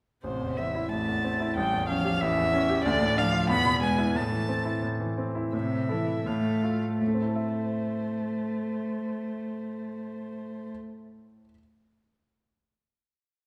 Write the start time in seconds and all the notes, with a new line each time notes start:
0.22 A1 C3 C5
0.41 E2
0.57 E3 C4 E5
0.75 E4
0.91 A1 A3 A5
1.08 E2
1.24 C4
1.40 E4
1.56 A1 G3 G5
1.73 E2
1.89 F3 C#4 F5
2.05 G4
2.20 A1 E3 E5
2.38 E2
2.54 C#4
2.70 G4
2.84 D2 D3 D5
3.01 A2
3.16 F3 D4 F5
3.33 F4
3.49 E2 B3 B5
3.65 B2
3.82 G#3 B3 G#5
3.98 E4
4.15 A2 A3 A5
4.32 E3
4.49 C4
4.65 E4
4.82 A2
5.00 E3
5.18 C4
5.35 E4
5.53 A2 C3 E5
5.89 E3 E4 A4
6.25 A2 A3 F5
6.64 F4 A4
7.00 A2 A3 C5
7.07 A3
7.15 C4
7.21 E4
7.29 A4
7.36 E5